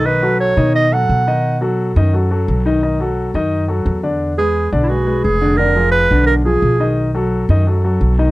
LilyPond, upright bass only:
\new Staff \with { instrumentName = "Upright bass" } { \clef bass \time 4/4 \key b \mixolydian \tempo 4 = 174 b,,4. b,4. b,4~ | b,4. fis,4. b,,4~ | b,,4. fis,4. e,4~ | e,4. b,,4. eis,,4~ |
eis,,4. ces,4. ces,4~ | ces,4. fis,4. b,,4 | }